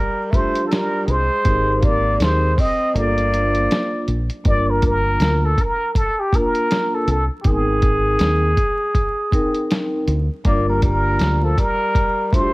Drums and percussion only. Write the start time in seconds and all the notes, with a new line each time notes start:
0.33 kick, closed hi-hat
0.55 closed hi-hat
0.72 snare, closed hi-hat
1.08 closed hi-hat
1.45 kick, closed hi-hat
1.83 kick, closed hi-hat
2.20 snare, closed hi-hat
2.58 kick, open hi-hat
2.96 closed hi-hat
3.18 closed hi-hat
3.34 closed hi-hat
3.55 closed hi-hat
3.71 snare, closed hi-hat
4.08 closed hi-hat
4.30 closed hi-hat
4.45 kick, closed hi-hat
4.82 kick, closed hi-hat
5.20 snare, closed hi-hat
5.58 kick, closed hi-hat
5.95 kick, closed hi-hat
6.33 kick, closed hi-hat
6.55 closed hi-hat
6.71 snare, closed hi-hat
7.08 closed hi-hat
7.44 kick, closed hi-hat
7.82 kick, closed hi-hat
8.19 snare, closed hi-hat
8.57 kick, closed hi-hat
8.95 kick, closed hi-hat
9.32 kick, closed hi-hat
9.55 closed hi-hat
9.71 snare, closed hi-hat
10.08 closed hi-hat
10.45 kick, closed hi-hat
10.82 kick, closed hi-hat
11.19 snare, closed hi-hat
11.58 kick, closed hi-hat
11.95 kick, closed hi-hat
12.33 kick, closed hi-hat